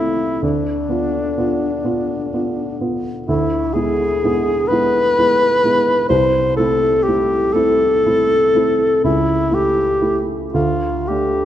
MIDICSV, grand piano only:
0, 0, Header, 1, 2, 480
1, 0, Start_track
1, 0, Key_signature, 0, "minor"
1, 0, Tempo, 969305
1, 211, Time_signature, 6, 3, 24, 8
1, 686, Tempo, 946372
1, 3566, Tempo, 988468
1, 5006, Tempo, 1083032
1, 5636, End_track
2, 0, Start_track
2, 0, Title_t, "Grand piano"
2, 0, Program_c, 0, 0
2, 0, Control_c, 0, 64, 127
2, 0, Note_on_c, 0, 57, 27
2, 0, Note_on_c, 0, 60, 26
2, 0, Note_on_c, 0, 64, 32
2, 190, Note_off_c, 0, 60, 0
2, 192, Note_off_c, 0, 57, 0
2, 192, Note_off_c, 0, 64, 0
2, 209, Note_on_c, 0, 38, 41
2, 219, Control_c, 0, 64, 0
2, 317, Control_c, 0, 64, 127
2, 442, Note_on_c, 0, 59, 31
2, 443, Note_off_c, 0, 38, 0
2, 444, Note_on_c, 0, 65, 35
2, 661, Note_off_c, 0, 59, 0
2, 662, Note_off_c, 0, 65, 0
2, 682, Note_on_c, 0, 59, 32
2, 686, Note_on_c, 0, 65, 32
2, 902, Note_off_c, 0, 59, 0
2, 903, Note_off_c, 0, 65, 0
2, 919, Note_on_c, 0, 59, 32
2, 923, Note_on_c, 0, 65, 33
2, 1141, Note_off_c, 0, 59, 0
2, 1144, Note_off_c, 0, 65, 0
2, 1168, Note_on_c, 0, 59, 30
2, 1169, Note_on_c, 0, 65, 34
2, 1389, Note_off_c, 0, 59, 0
2, 1389, Note_off_c, 0, 65, 0
2, 1409, Note_on_c, 0, 65, 31
2, 1410, Note_on_c, 0, 59, 30
2, 1630, Note_off_c, 0, 59, 0
2, 1630, Note_off_c, 0, 65, 0
2, 1649, Note_on_c, 0, 38, 44
2, 1658, Control_c, 0, 64, 0
2, 1741, Control_c, 0, 64, 127
2, 1882, Note_off_c, 0, 38, 0
2, 1887, Note_on_c, 0, 56, 31
2, 1888, Note_on_c, 0, 59, 33
2, 1892, Note_on_c, 0, 64, 40
2, 2109, Note_off_c, 0, 56, 0
2, 2109, Note_off_c, 0, 59, 0
2, 2111, Note_off_c, 0, 64, 0
2, 2133, Note_on_c, 0, 56, 34
2, 2138, Note_on_c, 0, 59, 38
2, 2138, Note_on_c, 0, 64, 38
2, 2353, Note_off_c, 0, 56, 0
2, 2355, Note_off_c, 0, 59, 0
2, 2355, Note_off_c, 0, 64, 0
2, 2372, Note_on_c, 0, 56, 35
2, 2374, Note_on_c, 0, 59, 36
2, 2377, Note_on_c, 0, 64, 41
2, 2591, Note_off_c, 0, 56, 0
2, 2592, Note_off_c, 0, 59, 0
2, 2594, Note_off_c, 0, 64, 0
2, 2614, Note_on_c, 0, 56, 32
2, 2614, Note_on_c, 0, 64, 33
2, 2616, Note_on_c, 0, 59, 34
2, 2827, Note_off_c, 0, 56, 0
2, 2827, Note_off_c, 0, 64, 0
2, 2828, Note_off_c, 0, 59, 0
2, 2843, Note_on_c, 0, 56, 30
2, 2848, Note_on_c, 0, 64, 34
2, 2851, Note_on_c, 0, 59, 33
2, 3060, Note_off_c, 0, 56, 0
2, 3062, Note_off_c, 0, 64, 0
2, 3064, Note_off_c, 0, 59, 0
2, 3077, Note_on_c, 0, 36, 47
2, 3090, Control_c, 0, 64, 0
2, 3163, Control_c, 0, 64, 127
2, 3314, Note_off_c, 0, 36, 0
2, 3320, Note_on_c, 0, 57, 32
2, 3322, Note_on_c, 0, 60, 33
2, 3327, Note_on_c, 0, 64, 37
2, 3545, Note_off_c, 0, 57, 0
2, 3547, Note_off_c, 0, 60, 0
2, 3549, Note_off_c, 0, 64, 0
2, 3572, Note_on_c, 0, 57, 37
2, 3575, Note_on_c, 0, 60, 33
2, 3577, Note_on_c, 0, 64, 40
2, 3784, Note_off_c, 0, 57, 0
2, 3786, Note_off_c, 0, 60, 0
2, 3787, Note_off_c, 0, 64, 0
2, 3798, Note_on_c, 0, 57, 35
2, 3803, Note_on_c, 0, 60, 37
2, 3805, Note_on_c, 0, 64, 42
2, 4020, Note_off_c, 0, 57, 0
2, 4023, Note_off_c, 0, 60, 0
2, 4024, Note_off_c, 0, 64, 0
2, 4052, Note_on_c, 0, 57, 34
2, 4052, Note_on_c, 0, 64, 37
2, 4053, Note_on_c, 0, 60, 37
2, 4272, Note_off_c, 0, 57, 0
2, 4272, Note_off_c, 0, 64, 0
2, 4273, Note_off_c, 0, 60, 0
2, 4286, Note_on_c, 0, 57, 31
2, 4289, Note_on_c, 0, 60, 33
2, 4292, Note_on_c, 0, 64, 35
2, 4510, Note_off_c, 0, 57, 0
2, 4511, Note_off_c, 0, 60, 0
2, 4512, Note_off_c, 0, 64, 0
2, 4526, Note_on_c, 0, 37, 49
2, 4539, Control_c, 0, 64, 0
2, 4618, Control_c, 0, 64, 127
2, 4753, Note_on_c, 0, 57, 33
2, 4755, Note_on_c, 0, 64, 38
2, 4758, Note_off_c, 0, 37, 0
2, 4980, Note_off_c, 0, 57, 0
2, 4981, Note_off_c, 0, 64, 0
2, 5000, Note_on_c, 0, 64, 37
2, 5002, Note_on_c, 0, 57, 37
2, 5216, Note_off_c, 0, 64, 0
2, 5217, Note_off_c, 0, 57, 0
2, 5233, Note_on_c, 0, 38, 49
2, 5244, Control_c, 0, 64, 0
2, 5338, Control_c, 0, 64, 127
2, 5472, Note_off_c, 0, 38, 0
2, 5477, Note_on_c, 0, 57, 30
2, 5479, Note_on_c, 0, 62, 30
2, 5636, Note_off_c, 0, 57, 0
2, 5636, Note_off_c, 0, 62, 0
2, 5636, End_track
0, 0, End_of_file